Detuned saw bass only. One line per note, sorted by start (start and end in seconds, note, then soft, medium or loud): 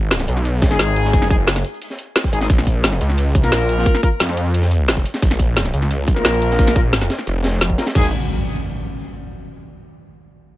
0.00 0.27 G#1 loud
0.28 0.78 B1 loud
0.79 1.12 G#1 loud
1.13 1.63 F#1 loud
2.33 2.48 G#1 loud
2.50 3.00 A#1 loud
3.01 3.51 C#2 loud
3.52 3.85 A#1 loud
4.20 5.04 F2 loud
5.22 5.72 A#1 loud
5.74 6.23 C#2 loud
6.25 6.58 A#1 loud
6.59 7.09 A#1 loud
7.27 7.77 F1 loud
7.95 8.11 G#1 loud